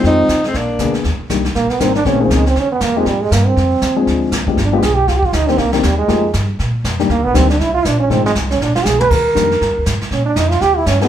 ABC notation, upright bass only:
X:1
M:4/4
L:1/8
Q:"Swing" 1/4=238
K:Eb
V:1 name="Upright bass" clef=bass
F,,2 E,,2 B,,,2 D,,2 | E,, z C,,2 B,,, z A,,,2 | B,,,2 _D,,2 E,,2 _F,,2 | A,,2 G,,2 F,,2 E,,2 |
D,,2 C,,2 G,,,2 =B,,,2 | C,,2 D,,2 C,,2 E,,2 | F,,2 G,,2 B,,2 F,,2 | (3E,, D,, B,,, D,,2 C,,2 B,,,2 |
A,,,2 C,,2 B,,, z _C,,2 | E,,2 F,,2 (3G,, E,, D,, A,, z | B,,2 F,,2 E,,2 G,,2 |]